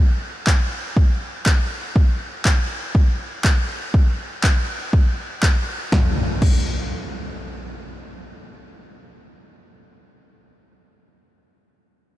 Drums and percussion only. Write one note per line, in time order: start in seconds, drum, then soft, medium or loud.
0.47 kick medium
0.47 clap loud
0.97 kick loud
1.46 kick medium
1.46 clap loud
1.96 kick loud
2.45 kick medium
2.45 clap loud
2.95 kick loud
3.44 kick medium
3.44 clap loud
3.94 kick loud
4.44 kick loud
4.44 clap loud
4.93 kick loud
5.43 kick loud
5.43 clap loud
5.92 kick loud
5.92 snare medium
6.42 kick loud
6.42 crash medium